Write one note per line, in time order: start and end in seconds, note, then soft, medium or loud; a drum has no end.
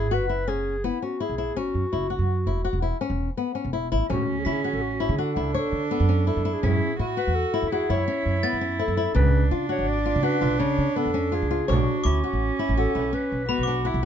0.00 0.20 G#1 medium
0.00 0.15 G#4 medium
0.11 0.25 F#4 medium
0.11 0.50 B4 medium
0.20 0.89 F#1 medium
0.29 0.43 E4 medium
0.48 0.75 C#4 medium
0.48 0.86 G#4 medium
0.84 0.98 B3 medium
0.84 1.05 E4 medium
1.02 1.16 C#4 medium
1.02 1.24 F#4 medium
1.20 1.34 E4 medium
1.20 1.59 G#4 medium
1.29 1.57 B1 medium
1.38 1.52 E4 medium
1.56 1.73 F#1 medium
1.56 1.84 C#4 medium
1.56 3.02 F#4 medium
1.75 1.83 F#2 medium
1.93 2.18 F#1 medium
1.93 2.06 E4 medium
2.10 2.38 F#4 medium
2.19 2.44 F#2 medium
2.46 2.55 F#1 medium
2.46 2.61 E4 medium
2.55 2.72 E1 medium
2.65 2.78 F#4 medium
2.73 2.90 E1 medium
2.82 2.96 E4 medium
3.01 3.29 C#4 medium
3.10 3.27 E1 medium
3.37 3.51 B3 medium
3.55 3.69 C#4 medium
3.65 3.90 E1 medium
3.73 3.87 E4 medium
3.92 4.00 A1 medium
3.92 4.06 E4 medium
4.09 4.44 D2 medium
4.09 5.20 C#4 medium
4.09 4.37 C#4 medium
4.09 4.40 F#4 medium
4.09 frame drum soft
4.39 4.46 G#4 medium
4.44 4.75 D3 medium
4.44 4.60 E4 medium
4.44 4.54 F#4 medium
4.44 5.35 B6 soft
4.52 4.76 G#4 medium
4.64 4.92 F#4 medium
4.73 5.07 A1 medium
4.73 4.83 A4 medium
4.82 5.13 F#4 medium
5.00 5.14 E4 medium
5.09 5.34 D3 medium
5.09 5.21 G#4 medium
5.18 6.65 D4 medium
5.18 5.32 F#4 medium
5.18 5.55 A4 medium
5.36 5.53 C#2 medium
5.36 5.50 E4 medium
5.36 frame drum soft
5.54 5.89 A4 medium
5.54 5.82 C#5 medium
5.72 5.89 D3 medium
5.91 6.05 B3 medium
5.91 6.24 A4 medium
6.00 6.33 F#2 medium
6.09 6.23 C#4 medium
6.27 6.41 E4 medium
6.27 6.55 A4 medium
6.36 6.53 F#2 medium
6.45 6.59 E4 medium
6.54 6.99 G#4 medium
6.63 6.80 F#2 medium
6.63 6.91 C#4 medium
6.63 6.99 E4 medium
6.63 frame drum medium
6.99 7.16 A2 medium
6.99 7.13 E4 medium
6.99 7.68 F#4 medium
7.17 7.45 F#4 medium
7.17 7.36 B4 medium
7.27 7.44 E2 medium
7.35 7.73 A4 medium
7.54 7.67 E4 medium
7.62 7.79 E2 medium
7.71 9.12 E4 medium
7.71 7.86 F#4 medium
7.71 7.92 G#4 medium
7.90 8.06 F#2 medium
7.90 8.03 E4 medium
7.90 8.53 C#5 medium
7.90 frame drum soft
8.08 8.35 C#4 medium
8.26 8.42 F#2 medium
8.43 8.57 B3 medium
8.43 9.30 A6 medium
8.53 8.86 F#2 medium
8.61 8.75 C#4 medium
8.79 8.93 E4 medium
8.79 9.13 A4 medium
8.88 9.05 F#2 medium
8.97 9.11 E4 medium
9.15 9.49 C#2 loud
9.15 9.43 C#3 medium
9.15 11.65 D4 loud
9.15 9.49 B4 medium
9.15 frame drum soft
9.51 9.80 C#3 medium
9.51 9.65 F4 medium
9.69 9.97 F#4 medium
9.69 9.90 C#5 medium
9.78 10.12 G#1 medium
9.88 10.25 D5 medium
10.06 10.20 F4 medium
10.15 10.41 C#3 medium
10.23 10.37 F#4 medium
10.23 10.61 B4 medium
10.41 10.59 B1 medium
10.41 10.55 F4 medium
10.41 frame drum soft
10.59 10.88 C#3 medium
10.59 10.98 C#5 medium
10.78 10.95 C#3 medium
10.96 11.10 B3 medium
10.96 11.36 A4 medium
11.06 11.39 F2 medium
11.14 11.28 C#4 medium
11.32 11.46 F4 medium
11.32 11.71 G#4 medium
11.42 11.59 C#2 medium
11.51 11.64 F4 medium
11.68 11.86 B1 medium
11.68 12.07 D4 medium
11.68 12.23 F#4 medium
11.68 11.96 C#5 medium
11.68 frame drum medium
12.04 12.22 D2 medium
12.04 13.49 C#4 medium
12.04 12.19 E4 medium
12.04 12.94 D6 medium
12.24 12.51 F#4 medium
12.24 12.57 F#4 medium
12.33 12.49 A1 medium
12.59 12.73 E4 medium
12.69 12.85 A1 medium
12.77 12.91 F#4 medium
12.77 13.16 A4 medium
12.77 frame drum soft
12.95 13.12 B1 medium
12.95 13.09 E4 medium
12.95 frame drum soft
13.13 13.40 C#4 medium
13.13 13.77 B4 medium
13.13 frame drum soft
13.32 13.48 B1 medium
13.49 13.63 B3 medium
13.49 13.88 F#4 medium
13.49 14.05 B5 soft
13.58 13.92 B1 medium
13.63 14.05 D6 soft
13.67 13.81 D4 medium
13.85 14.05 E4 medium
13.85 13.99 F#4 medium
13.94 14.05 B1 medium